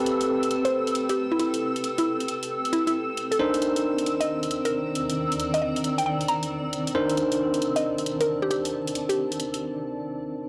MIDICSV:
0, 0, Header, 1, 6, 480
1, 0, Start_track
1, 0, Tempo, 444444
1, 1747, Time_signature, 4, 2, 24, 8
1, 11328, End_track
2, 0, Start_track
2, 0, Title_t, "Analog synth pad"
2, 0, Program_c, 0, 89
2, 0, Note_on_c, 0, 88, 86
2, 10387, Note_off_c, 0, 88, 0
2, 11328, End_track
3, 0, Start_track
3, 0, Title_t, "Ambient pad"
3, 0, Program_c, 1, 92
3, 0, Note_on_c, 1, 60, 79
3, 0, Note_on_c, 1, 69, 74
3, 0, Note_on_c, 1, 79, 82
3, 3655, Note_off_c, 1, 60, 0
3, 3668, Note_off_c, 1, 69, 0
3, 3668, Note_on_c, 1, 60, 71
3, 3743, Note_on_c, 1, 51, 81
3, 4127, Note_on_c, 1, 82, 83
3, 4135, Note_on_c, 1, 74, 86
3, 5200, Note_off_c, 1, 79, 0
3, 7668, Note_on_c, 1, 81, 89
3, 7786, Note_off_c, 1, 82, 0
3, 10387, Note_off_c, 1, 74, 0
3, 10388, Note_off_c, 1, 51, 0
3, 10388, Note_off_c, 1, 60, 0
3, 10388, Note_off_c, 1, 81, 0
3, 11328, End_track
4, 0, Start_track
4, 0, Title_t, "Synth pluck"
4, 0, Program_c, 2, 84
4, 700, Note_on_c, 2, 72, 88
4, 849, Note_off_c, 2, 72, 0
4, 1183, Note_on_c, 2, 67, 89
4, 1422, Note_on_c, 2, 64, 91
4, 1490, Note_off_c, 2, 64, 0
4, 1508, Note_off_c, 2, 67, 0
4, 1508, Note_on_c, 2, 64, 92
4, 1987, Note_off_c, 2, 64, 0
4, 2144, Note_on_c, 2, 64, 91
4, 2291, Note_off_c, 2, 64, 0
4, 2946, Note_on_c, 2, 64, 91
4, 3045, Note_off_c, 2, 64, 0
4, 3101, Note_on_c, 2, 64, 76
4, 3156, Note_off_c, 2, 64, 0
4, 3581, Note_on_c, 2, 69, 88
4, 3728, Note_off_c, 2, 69, 0
4, 4542, Note_on_c, 2, 75, 85
4, 4690, Note_off_c, 2, 75, 0
4, 5024, Note_on_c, 2, 70, 86
4, 5348, Note_off_c, 2, 70, 0
4, 5982, Note_on_c, 2, 75, 86
4, 6036, Note_off_c, 2, 75, 0
4, 6066, Note_on_c, 2, 75, 72
4, 6166, Note_off_c, 2, 75, 0
4, 6459, Note_on_c, 2, 79, 88
4, 6515, Note_off_c, 2, 79, 0
4, 6545, Note_on_c, 2, 79, 76
4, 6645, Note_off_c, 2, 79, 0
4, 6788, Note_on_c, 2, 82, 88
4, 7183, Note_off_c, 2, 82, 0
4, 8381, Note_on_c, 2, 75, 87
4, 8529, Note_off_c, 2, 75, 0
4, 8862, Note_on_c, 2, 70, 85
4, 9096, Note_on_c, 2, 67, 95
4, 9167, Note_off_c, 2, 67, 0
4, 9185, Note_on_c, 2, 67, 94
4, 9187, Note_off_c, 2, 70, 0
4, 9666, Note_off_c, 2, 67, 0
4, 9819, Note_on_c, 2, 67, 90
4, 9969, Note_off_c, 2, 67, 0
4, 11328, End_track
5, 0, Start_track
5, 0, Title_t, "Tine electric piano"
5, 0, Program_c, 3, 4
5, 0, Note_on_c, 3, 60, 74
5, 0, Note_on_c, 3, 67, 68
5, 0, Note_on_c, 3, 69, 72
5, 0, Note_on_c, 3, 71, 84
5, 3645, Note_off_c, 3, 67, 0
5, 3645, Note_off_c, 3, 69, 0
5, 3646, Note_off_c, 3, 60, 0
5, 3646, Note_off_c, 3, 71, 0
5, 3666, Note_on_c, 3, 62, 75
5, 3666, Note_on_c, 3, 63, 70
5, 3666, Note_on_c, 3, 70, 69
5, 3666, Note_on_c, 3, 72, 81
5, 7486, Note_off_c, 3, 62, 0
5, 7486, Note_off_c, 3, 63, 0
5, 7486, Note_off_c, 3, 70, 0
5, 7486, Note_off_c, 3, 72, 0
5, 7504, Note_on_c, 3, 70, 67
5, 7505, Note_on_c, 3, 62, 74
5, 7505, Note_on_c, 3, 63, 69
5, 7505, Note_on_c, 3, 72, 86
5, 11325, Note_off_c, 3, 70, 0
5, 11325, Note_off_c, 3, 72, 0
5, 11326, Note_off_c, 3, 62, 0
5, 11326, Note_off_c, 3, 63, 0
5, 11328, End_track
6, 0, Start_track
6, 0, Title_t, "Drums"
6, 67, Note_on_c, 9, 42, 95
6, 175, Note_off_c, 9, 42, 0
6, 223, Note_on_c, 9, 42, 61
6, 331, Note_off_c, 9, 42, 0
6, 464, Note_on_c, 9, 42, 50
6, 547, Note_off_c, 9, 42, 0
6, 547, Note_on_c, 9, 42, 87
6, 655, Note_off_c, 9, 42, 0
6, 703, Note_on_c, 9, 42, 59
6, 811, Note_off_c, 9, 42, 0
6, 942, Note_on_c, 9, 42, 36
6, 1027, Note_off_c, 9, 42, 0
6, 1027, Note_on_c, 9, 42, 100
6, 1135, Note_off_c, 9, 42, 0
6, 1181, Note_on_c, 9, 42, 63
6, 1289, Note_off_c, 9, 42, 0
6, 1507, Note_on_c, 9, 42, 89
6, 1615, Note_off_c, 9, 42, 0
6, 1661, Note_on_c, 9, 42, 60
6, 1769, Note_off_c, 9, 42, 0
6, 1901, Note_on_c, 9, 42, 49
6, 1987, Note_off_c, 9, 42, 0
6, 1987, Note_on_c, 9, 42, 96
6, 2095, Note_off_c, 9, 42, 0
6, 2141, Note_on_c, 9, 42, 61
6, 2249, Note_off_c, 9, 42, 0
6, 2381, Note_on_c, 9, 42, 48
6, 2467, Note_off_c, 9, 42, 0
6, 2467, Note_on_c, 9, 42, 86
6, 2575, Note_off_c, 9, 42, 0
6, 2622, Note_on_c, 9, 42, 59
6, 2730, Note_off_c, 9, 42, 0
6, 2863, Note_on_c, 9, 42, 35
6, 2948, Note_off_c, 9, 42, 0
6, 2948, Note_on_c, 9, 42, 96
6, 3056, Note_off_c, 9, 42, 0
6, 3103, Note_on_c, 9, 42, 62
6, 3211, Note_off_c, 9, 42, 0
6, 3428, Note_on_c, 9, 42, 83
6, 3536, Note_off_c, 9, 42, 0
6, 3583, Note_on_c, 9, 42, 62
6, 3691, Note_off_c, 9, 42, 0
6, 3823, Note_on_c, 9, 42, 54
6, 3908, Note_off_c, 9, 42, 0
6, 3908, Note_on_c, 9, 42, 98
6, 4016, Note_off_c, 9, 42, 0
6, 4063, Note_on_c, 9, 42, 63
6, 4171, Note_off_c, 9, 42, 0
6, 4303, Note_on_c, 9, 42, 51
6, 4389, Note_off_c, 9, 42, 0
6, 4389, Note_on_c, 9, 42, 85
6, 4497, Note_off_c, 9, 42, 0
6, 4543, Note_on_c, 9, 42, 61
6, 4651, Note_off_c, 9, 42, 0
6, 4784, Note_on_c, 9, 42, 38
6, 4868, Note_off_c, 9, 42, 0
6, 4868, Note_on_c, 9, 42, 96
6, 4976, Note_off_c, 9, 42, 0
6, 5024, Note_on_c, 9, 42, 63
6, 5132, Note_off_c, 9, 42, 0
6, 5349, Note_on_c, 9, 42, 81
6, 5457, Note_off_c, 9, 42, 0
6, 5503, Note_on_c, 9, 42, 66
6, 5611, Note_off_c, 9, 42, 0
6, 5744, Note_on_c, 9, 42, 54
6, 5827, Note_off_c, 9, 42, 0
6, 5827, Note_on_c, 9, 42, 100
6, 5935, Note_off_c, 9, 42, 0
6, 5983, Note_on_c, 9, 42, 65
6, 6091, Note_off_c, 9, 42, 0
6, 6224, Note_on_c, 9, 42, 54
6, 6309, Note_off_c, 9, 42, 0
6, 6309, Note_on_c, 9, 42, 90
6, 6417, Note_off_c, 9, 42, 0
6, 6463, Note_on_c, 9, 42, 68
6, 6571, Note_off_c, 9, 42, 0
6, 6704, Note_on_c, 9, 42, 40
6, 6787, Note_off_c, 9, 42, 0
6, 6787, Note_on_c, 9, 42, 105
6, 6895, Note_off_c, 9, 42, 0
6, 6942, Note_on_c, 9, 42, 66
6, 7050, Note_off_c, 9, 42, 0
6, 7268, Note_on_c, 9, 42, 90
6, 7376, Note_off_c, 9, 42, 0
6, 7423, Note_on_c, 9, 42, 68
6, 7531, Note_off_c, 9, 42, 0
6, 7663, Note_on_c, 9, 42, 55
6, 7748, Note_off_c, 9, 42, 0
6, 7748, Note_on_c, 9, 42, 104
6, 7856, Note_off_c, 9, 42, 0
6, 7903, Note_on_c, 9, 42, 67
6, 8011, Note_off_c, 9, 42, 0
6, 8143, Note_on_c, 9, 42, 54
6, 8228, Note_off_c, 9, 42, 0
6, 8228, Note_on_c, 9, 42, 94
6, 8336, Note_off_c, 9, 42, 0
6, 8382, Note_on_c, 9, 42, 66
6, 8490, Note_off_c, 9, 42, 0
6, 8622, Note_on_c, 9, 42, 41
6, 8707, Note_off_c, 9, 42, 0
6, 8707, Note_on_c, 9, 42, 106
6, 8815, Note_off_c, 9, 42, 0
6, 8862, Note_on_c, 9, 42, 66
6, 8970, Note_off_c, 9, 42, 0
6, 9187, Note_on_c, 9, 42, 88
6, 9295, Note_off_c, 9, 42, 0
6, 9343, Note_on_c, 9, 42, 70
6, 9451, Note_off_c, 9, 42, 0
6, 9584, Note_on_c, 9, 42, 55
6, 9668, Note_off_c, 9, 42, 0
6, 9668, Note_on_c, 9, 42, 106
6, 9776, Note_off_c, 9, 42, 0
6, 9823, Note_on_c, 9, 42, 65
6, 9931, Note_off_c, 9, 42, 0
6, 10063, Note_on_c, 9, 42, 53
6, 10148, Note_off_c, 9, 42, 0
6, 10148, Note_on_c, 9, 42, 94
6, 10256, Note_off_c, 9, 42, 0
6, 10302, Note_on_c, 9, 42, 66
6, 10410, Note_off_c, 9, 42, 0
6, 11328, End_track
0, 0, End_of_file